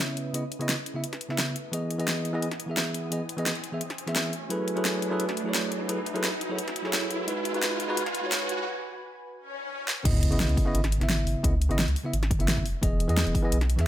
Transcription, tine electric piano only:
0.00 0.31 C#3 medium
0.00 0.32 B3 medium
0.00 0.33 E4 medium
0.00 0.34 E5 medium
0.33 0.42 C#3 medium
0.33 0.43 B3 medium
0.33 0.43 E4 medium
0.33 0.44 D#5 medium
0.59 0.73 C#3 medium
0.59 0.74 B3 medium
0.59 0.74 E4 medium
0.59 0.74 D#5 loud
0.94 1.03 C#3 medium
0.94 1.03 B3 medium
0.94 1.03 E4 medium
0.94 1.04 E5 medium
1.29 1.54 C#3 medium
1.29 1.54 B3 medium
1.29 1.55 E4 medium
1.29 1.55 E5 medium
1.72 1.97 E3 medium
1.72 1.97 B3 medium
1.72 1.97 G#4 medium
1.72 1.98 D#5 medium
1.98 2.31 E3 medium
1.98 2.32 B3 medium
1.98 2.32 G#4 medium
1.98 2.32 D#5 loud
2.33 2.47 E3 loud
2.33 2.47 B3 medium
2.33 2.47 G#4 medium
2.33 2.48 D#5 loud
2.66 3.08 E3 medium
2.66 3.09 B3 medium
2.66 3.10 G#4 medium
2.71 3.11 E5 medium
3.10 3.20 E3 medium
3.10 3.20 B3 medium
3.10 3.21 G#4 medium
3.10 3.21 D#5 medium
3.37 3.51 E3 medium
3.37 3.51 B3 medium
3.37 3.52 G#4 medium
3.37 3.52 D#5 loud
3.72 3.80 E3 medium
3.72 3.81 B3 medium
3.72 3.81 G#4 medium
3.72 3.81 E5 medium
4.07 4.32 E3 medium
4.07 4.32 B3 medium
4.07 4.32 G#4 medium
4.07 4.33 E5 medium
4.49 4.74 F#3 medium
4.49 4.74 E4 medium
4.49 4.75 G#4 medium
4.49 4.75 A4 medium
4.49 4.75 B4 medium
4.76 5.09 F#3 medium
4.76 5.09 E4 medium
4.76 5.09 G#4 medium
4.76 5.10 A4 medium
4.76 5.10 B4 medium
5.10 5.24 F#3 loud
5.10 5.24 E4 medium
5.10 5.25 G#4 medium
5.10 5.25 A4 medium
5.10 5.25 B4 loud
5.44 5.86 F#3 medium
5.44 5.87 E4 medium
5.44 5.87 G#4 medium
5.44 5.88 A4 medium
5.49 5.88 C#5 medium
5.88 5.97 F#3 medium
5.88 5.98 E4 medium
5.88 5.98 G#4 medium
5.88 5.98 A4 medium
5.88 5.99 B4 medium
6.14 6.28 F#3 loud
6.14 6.28 E4 medium
6.14 6.29 G#4 medium
6.14 6.29 A4 medium
6.14 6.29 B4 loud
6.49 6.58 F#3 medium
6.49 6.58 E4 medium
6.49 6.58 G#4 medium
6.49 6.59 A4 medium
6.49 6.59 C#5 medium
6.82 7.25 F#3 medium
6.82 7.25 E4 medium
6.82 7.26 G#4 medium
6.82 7.26 A4 medium
6.87 7.27 C#5 medium
7.27 7.52 G#3 medium
7.27 7.52 D#4 medium
7.27 7.52 F#4 medium
7.27 7.53 B4 medium
7.53 7.86 G#3 medium
7.53 7.87 D#4 medium
7.53 7.87 F#4 medium
7.53 7.87 B4 loud
7.88 8.01 G#3 loud
7.88 8.02 D#4 medium
7.88 8.02 F#4 medium
7.88 8.03 B4 loud
8.21 8.64 G#3 medium
8.21 8.64 D#4 medium
8.21 8.65 F#4 medium
8.26 8.66 C#5 medium
10.04 10.29 C#3 medium
10.04 10.29 B3 medium
10.04 10.30 E4 medium
10.04 10.30 D#5 medium
10.30 10.64 C#3 medium
10.30 10.64 B3 medium
10.30 10.64 E4 medium
10.30 10.65 D#5 loud
10.65 10.79 C#3 loud
10.65 10.79 B3 medium
10.65 10.80 E4 medium
10.65 10.80 D#5 loud
10.99 11.41 C#3 medium
10.99 11.42 B3 medium
10.99 11.42 E4 medium
11.03 11.43 E5 medium
11.43 11.52 C#3 medium
11.43 11.53 B3 medium
11.43 11.53 E4 medium
11.43 11.53 D#5 medium
11.69 11.83 C#3 loud
11.69 11.83 B3 medium
11.69 11.84 E4 loud
11.69 11.84 D#5 loud
12.04 12.12 C#3 medium
12.04 12.13 B3 medium
12.04 12.13 E4 medium
12.04 12.14 E5 medium
12.39 12.64 C#3 medium
12.39 12.64 B3 medium
12.39 12.65 E4 medium
12.39 12.65 E5 medium
12.82 13.06 E3 medium
12.82 13.07 B3 medium
12.82 13.07 G#4 medium
12.82 13.08 D#5 medium
13.08 13.41 E3 medium
13.08 13.42 B3 medium
13.08 13.42 G#4 medium
13.08 13.42 D#5 loud
13.42 13.56 E3 loud
13.42 13.57 B3 medium
13.42 13.57 G#4 medium
13.42 13.58 D#5 loud
13.76 13.87 E3 medium
13.76 13.87 B3 medium
13.76 13.87 G#4 medium
13.81 13.87 E5 medium

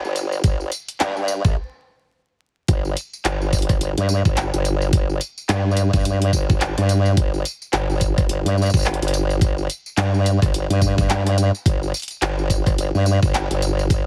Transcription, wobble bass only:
0.05 0.43 G1 loud
0.44 0.70 G1 loud
1.00 1.42 G2 loud
1.45 1.56 A#1 loud
2.69 2.95 G1 loud
3.25 3.79 G1 medium
3.81 3.95 G1 loud
3.98 4.23 G2 loud
4.25 4.51 G1 loud
4.54 4.91 G1 medium
4.93 5.19 G1 medium
5.49 5.91 G2 medium
5.94 6.31 G2 loud
6.33 6.75 G1 loud
6.78 7.16 G2 medium
7.17 7.43 G1 loud
7.73 8.28 G1 medium
8.29 8.43 G1 loud
8.45 8.71 G2 loud
8.74 8.99 G1 loud
9.02 9.40 G1 loud
9.41 9.68 G1 medium
9.97 10.39 G2 medium
10.42 10.68 G1 loud
10.70 11.52 G2 loud
11.66 11.92 G1 loud
12.22 12.76 G1 loud
12.78 12.92 G1 loud
12.95 13.20 G2 loud
13.23 13.48 G1 loud
13.51 13.88 G1 loud
13.90 14.07 G1 loud

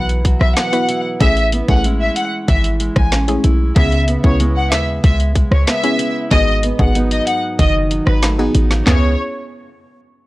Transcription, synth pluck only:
0.72 0.93 B3 medium
0.72 0.93 E4 medium
0.72 0.93 F#4 medium
0.72 0.93 B4 medium
1.20 1.41 A3 medium
1.20 1.41 C#4 medium
1.20 1.41 E4 medium
1.20 1.41 G#4 loud
1.68 1.89 A3 medium
1.68 1.89 C#4 medium
1.68 1.89 E4 medium
1.68 1.89 G#4 medium
3.28 3.48 A3 medium
3.28 3.49 C#4 medium
3.28 3.49 E4 medium
3.28 3.49 G#4 medium
3.76 3.96 B3 loud
3.76 3.97 C#4 medium
3.76 3.97 E4 medium
3.76 3.97 G#4 loud
4.24 4.44 B3 medium
4.24 4.44 C#4 medium
4.24 4.44 E4 medium
4.24 4.45 G#4 medium
5.83 6.04 B3 medium
5.83 6.04 C#4 medium
5.83 6.04 E4 medium
5.83 6.04 G#4 medium
6.31 6.52 B3 medium
6.31 6.52 D#4 medium
6.31 6.52 F#4 medium
6.31 6.52 G#4 loud
6.79 7.00 B3 medium
6.79 7.00 D#4 medium
6.79 7.00 F#4 medium
6.79 7.00 G#4 medium
8.39 8.59 B3 medium
8.39 8.59 D#4 medium
8.39 8.59 F#4 medium
8.39 8.60 G#4 medium
8.86 9.10 B3 medium
8.86 9.10 C#4 medium
8.86 9.11 E4 medium
8.86 9.11 G#4 medium

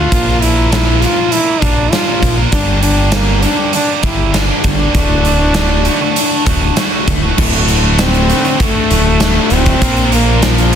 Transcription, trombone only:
0.00 0.44 F4 loud
0.42 0.72 E4 loud
0.73 1.03 E4 medium
1.02 1.33 F4 loud
1.32 1.63 E4 loud
1.62 1.93 D4 medium
1.92 2.38 F4 loud
2.52 2.81 D4 medium
2.83 3.11 D4 medium
3.13 3.44 A#3 medium
3.43 3.74 D4 medium
3.75 3.96 D4 medium
3.96 4.05 D4 medium
4.03 4.37 E4 medium
4.64 6.73 D4 loud
8.00 8.66 C4 medium
8.64 9.56 A3 medium
9.54 10.12 C4 medium
10.14 10.43 A#3 medium
10.44 10.75 F3 loud

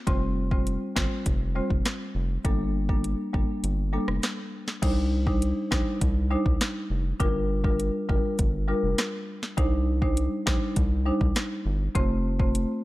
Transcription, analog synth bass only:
0.07 0.78 F1 loud
0.96 1.08 G1 loud
1.26 1.61 F1 loud
1.70 1.82 F1 medium
2.15 2.38 F1 medium
2.45 3.15 G1 loud
3.34 3.46 G1 medium
3.64 3.98 G1 loud
4.08 4.20 F1 medium
4.82 5.53 C2 loud
5.72 5.83 A#1 loud
6.01 6.36 C2 loud
6.46 6.57 C2 medium
6.90 7.14 F1 loud
7.20 7.91 G1 loud
8.09 8.21 G1 loud
8.39 8.74 G1 loud
8.83 8.95 F1 medium
9.58 10.28 C2 loud
10.47 10.58 A#1 loud
10.77 11.11 C2 loud
11.21 11.33 C2 medium
11.66 11.89 G1 loud
11.95 12.66 F1 loud

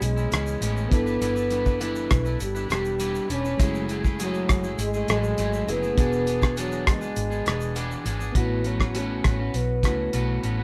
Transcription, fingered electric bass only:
0.01 0.26 B1 medium
0.32 0.56 C#2 medium
0.61 0.85 A1 medium
0.91 1.15 G1 medium
1.21 2.07 G1 loud
2.11 2.35 B1 medium
2.40 2.64 G1 medium
2.70 3.18 E1 medium
3.29 3.53 E1 medium
3.59 4.45 F#1 loud
4.50 4.73 F#1 medium
4.78 5.02 G#1 medium
5.08 5.32 A1 medium
5.38 5.62 G#1 medium
5.67 5.91 F#1 medium
5.98 6.87 E1 loud
6.87 7.11 F#1 medium
7.16 7.40 G#1 medium
7.46 7.94 E1 medium
8.05 8.29 G#1 medium
8.35 9.20 A1 medium
9.25 9.48 A1 medium
9.54 9.83 B1 medium
9.83 10.07 C#2 medium
10.14 10.37 B1 medium
10.44 10.63 A1 medium

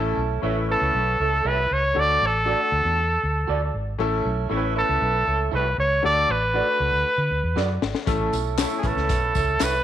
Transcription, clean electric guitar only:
0.43 0.54 A4 medium
0.43 0.54 C#5 medium
0.43 0.55 E5 medium
1.44 1.56 A4 medium
1.44 1.56 C#5 loud
1.44 1.57 E5 medium
2.46 2.58 F#4 medium
2.46 2.58 A4 loud
2.46 2.59 D5 medium
3.47 3.59 F#4 medium
3.47 3.60 A4 medium
3.47 3.60 D5 loud
4.49 4.61 E4 medium
4.49 4.62 A4 medium
4.49 4.62 C#5 medium
5.52 5.63 E4 medium
5.52 5.64 A4 medium
5.52 5.64 C#5 medium
6.54 6.66 F#4 medium
6.54 6.66 A4 medium
6.54 6.66 D5 medium
7.56 7.67 F#4 medium
7.56 7.68 A4 medium
7.56 7.68 D5 medium
8.59 8.70 E4 medium
8.59 8.70 A4 medium
8.59 8.71 C#5 medium
9.60 9.71 E4 medium
9.60 9.72 A4 medium
9.60 9.72 C#5 medium

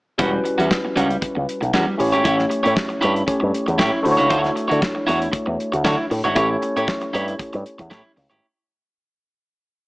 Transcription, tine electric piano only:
0.18 1.95 G3 medium
0.18 1.96 C#4 medium
0.18 1.96 E4 medium
0.18 1.96 F#4 medium
0.18 1.97 B4 medium
1.98 3.24 A3 medium
1.98 3.25 C#4 medium
1.98 3.25 E4 medium
1.98 3.25 G4 medium
1.98 3.26 C#5 medium
3.26 4.01 A3 medium
3.26 4.05 C#4 medium
3.26 4.03 E4 soft
3.26 4.05 G4 medium
3.26 4.05 C#5 medium
4.03 6.06 A3 medium
4.03 6.06 D4 medium
4.03 6.06 E4 medium
4.03 6.07 F#4 medium
4.03 4.12 C5 medium
4.12 6.10 C#5 medium
6.35 8.38 A3 medium
6.35 8.38 C#4 medium
6.35 8.39 E4 medium
6.35 8.39 G4 medium
6.35 8.39 C#5 medium

